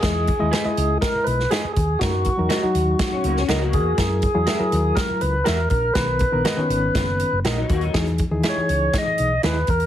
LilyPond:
<<
  \new Staff \with { instrumentName = "Clean electric guitar" } { \time 4/4 \key e \lydian \tempo 4 = 121 r4 <gis' b' dis''>16 r4. r16 <gis' b' dis''>16 r8. | r4 <fis' ais' dis''>16 r4. r16 <fis' ais' dis''>16 r8. | r4 <fis' ais' e''>16 r4. r16 <fis' ais' e''>16 r8. | r4 <fis' ais' dis''>16 r4. r16 <fis' ais' dis''>16 r8. |
r4 <e' gis' dis''>16 r4. r16 <e' gis' dis''>16 r8. | }
  \new Staff \with { instrumentName = "Tonewheel organ" } { \time 4/4 \key e \lydian gis'2 ais'8 b'8 gis'8 gis'8 | fis'2. r8 gis'8~ | gis'2 ais'8 b'8 ais'8 ais'8 | b'2. r4 |
r4 cis''4 dis''4 b'8 ais'8 | }
  \new Staff \with { instrumentName = "Reed electric piano" } { \time 4/4 \key e \lydian <gis e' dis''>8 r16 <gis e' dis''>16 r16 <gis e' dis''>4. r4 r16 | <fis dis' ais'>8 r16 <fis dis' ais'>16 r16 <fis dis' fis'>4. r4 r16 | <fis e' ais'>8 r16 <fis e' gis'>16 r16 <fis e' ais'>4. r4 r16 | <dis b ais'>8 r16 <dis b ais'>16 r16 <dis b cis'>4. r4 r16 |
<e dis' gis'>8 r16 <e dis' gis'>16 r16 <e dis' g' gis'>4. r4 r16 | }
  \new Staff \with { instrumentName = "Clean electric guitar" } { \time 4/4 \key e \lydian r1 | r2 r16 cis'16 <cis ais>16 cis'16 <fis dis'>16 <ais fis'>8. | r1 | r2. r16 <fis dis'>16 <ais fis'>16 <fis dis'>16~ |
<fis dis'>16 r2. r8. | }
  \new Staff \with { instrumentName = "Fingered electric bass" } { \clef bass \time 4/4 \key e \lydian e,8. dis,16 r8 cis,8 r8 b,,8 r8 dis,8 | fis,8. e,16 r8 dis,8 r8 cis,8 cis,8 e,8 | fis,8. e,16 r8 dis,8 r8 cis,8 e,8 ais,,8 | b,,8. ais,,16 r8 gis,,8 fis,,8. fis,,16 ais,,8 dis,8 |
e,8. dis,16 r8 cis,8 r8 b,,8 dis,8 e,8 | }
  \new DrumStaff \with { instrumentName = "Drums" } \drummode { \time 4/4 <hh bd sn>8 <hh bd>8 <hh sn>8 hh8 <hh bd sn>8 hh16 sn16 <hh sn>8 <hh bd>8 | <hh bd sn>8 <hh bd>8 <hh sn>8 hh8 <hh bd sn>8 hh16 sn16 <hh sn>8 <hh bd>8 | <hh bd sn>8 <hh bd>8 <hh sn>8 hh8 <hh bd sn>8 hh8 <hh sn>8 <hh bd>8 | <hh bd sn>8 <hh bd>8 <hh sn>8 hh8 <hh bd sn>8 hh8 <hh sn>8 <hh bd>16 hh16 |
<hh bd sn>16 hh16 <hh bd>8 <hh sn>8 hh8 <hh bd sn>8 hh8 <hh sn>8 <hh bd>16 hh16 | }
>>